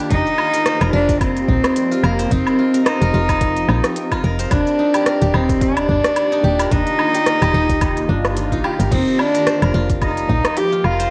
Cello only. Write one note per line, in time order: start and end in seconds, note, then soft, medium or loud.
0.11 0.89 D#4 loud
0.93 1.19 D4 loud
1.21 2.05 C4 loud
2.04 2.33 A#3 medium
2.31 2.85 C4 loud
2.86 4.20 D#4 loud
4.51 5.36 D4 loud
5.34 5.63 C4 medium
5.62 6.73 D4 loud
6.72 8.37 D#4 loud
8.91 9.20 C4 loud
9.19 9.74 D4 loud
10.02 10.58 D#4 loud
10.57 10.86 G4 loud
10.84 11.10 F4 loud